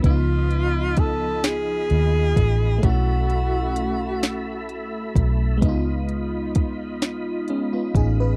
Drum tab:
HH |xxxxxx|xxxxxx|xxxxxx|
SD |---o--|---o--|---o--|
BD |o-o--o|o----o|o-o--o|